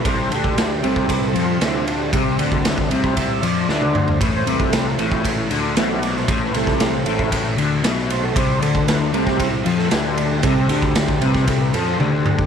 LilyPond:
<<
  \new Staff \with { instrumentName = "Transistor combo organ" } { \time 4/4 \key c \major \tempo 4 = 116 c''8 g'4 a'8 \tuplet 3/2 { b'8 a'8 f'8 e'8 f'8 g'8~ } | g'8. r4 r16 e''8 d''4 c''8 | b'16 c''16 b'16 a'16 g'16 f'16 e'16 e'8 r8. e''16 d''8 c''16~ | c''16 b'16 a'8 g'16 f'16 e'8 r4. c''16 a'16 |
c''8 a'8 b'8 a'16 g'16 e'8 f'16 a'16 g'8 a'16 g'16 | a'8 g'4 b'8 a'16 b'16 a'8 g'4 | }
  \new Staff \with { instrumentName = "Transistor combo organ" } { \clef bass \time 4/4 \key c \major r4. <c g c'>4. <c g c'>8 r8 | <c g c'>4. <c g c'>8 r2 | r8 <e a c'>4. r4 <e a c'>8 r8 | r8 <e a c'>4. r2 |
r4. <c g c'>8 r2 | <c g c'>8 r4 <c g c'>8 r2 | }
  \new Staff \with { instrumentName = "Overdriven electric guitar" } { \clef bass \time 4/4 \key c \major c8 d4 c4 f8 d4 | c8 d4 c4 f8 d4 | a,8 c4 a,4 d8 b,4 | a,8 c4 a,4 d8 b,4 |
c8 d4 c4 f8 d4 | c8 d4 c4 f8 d4 | }
  \new Staff \with { instrumentName = "Fingered electric bass" } { \clef bass \time 4/4 \key c \major c,8 d,4 c,4 f,8 d,4 | c,8 d,4 c,4 f,8 d,4 | a,,8 c,4 a,,4 d,8 b,,4 | a,,8 c,4 a,,4 d,8 b,,4 |
c,8 d,4 c,4 f,8 d,4 | c,8 d,4 c,4 f,8 d,4 | }
  \new DrumStaff \with { instrumentName = "Drums" } \drummode { \time 4/4 <bd cymr>8 cymr16 bd16 <cymr sn>8 cymr16 bd16 <bd cymr>8 cymr8 <cymr sn>8 cymr8 | <bd cymr>8 cymr16 bd16 <cymr sn>16 bd16 cymr16 bd16 <bd cymr>8 cymr8 sn16 tommh16 toml16 tomfh16 | <bd cymr>8 cymr16 bd16 <cymr sn>8 cymr16 bd16 <bd cymr>8 cymr8 <cymr sn>8 <cymr sn>16 sn16 | <bd cymr>8 cymr16 <bd sn>16 <cymr sn>8 cymr16 bd16 <bd cymr>8 cymr8 <cymr sn>16 sn16 cymr8 |
<bd cymr>8 cymr16 bd16 <cymr sn>8 cymr16 <bd sn>16 <bd cymr>8 cymr16 sn16 <cymr sn>8 cymr8 | <bd cymr>8 cymr16 bd16 <cymr sn>16 bd16 cymr16 <bd sn>16 <bd cymr>8 cymr8 tommh8 toml16 bd16 | }
>>